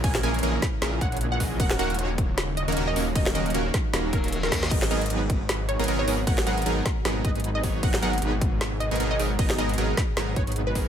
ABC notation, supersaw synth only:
X:1
M:4/4
L:1/16
Q:"Swing 16ths" 1/4=154
K:G#m
V:1 name="Supersaw synth"
[E,A,CGA]2 [E,A,CGA]2 [E,A,CGA]2 z2 [E,A,CGA]2 [E,A,CGc]4 [E,A,CGd]2 | [D,A,CFA]2 [D,A,CFA] z [D,A,CFc]6- [D,A,CFc] [D,A,CFA] [D,A,CFA]2 [D,A,CFA] z | [D,A,CFA]2 [D,A,CFA]2 [D,A,CFA]2 z2 [D,A,CFA]2 [D,A,CFc]4 [D,A,CFd]2 | [F,B,DGA]2 [F,B,DGA] z [F,B,DGB]6- [F,B,DGB] [F,B,DGA] [F,B,DGA]2 [F,B,DGA] z |
[F,B,DGA]2 [F,B,DGA]2 [F,B,DGA]2 z2 [F,B,DGA]2 [F,B,DGB]4 [F,B,DGc]2 | [F,B,DGA]2 [F,B,DGA] z [F,B,DGB]6- [F,B,DGB] [F,B,DGA] [F,B,DGA]2 [F,B,DGA] z | [F,B,DGA]2 [F,B,DGA]2 [F,B,DGA]2 z2 [F,B,DGA]2 [F,B,DGB]4 [F,B,DGA]2 |]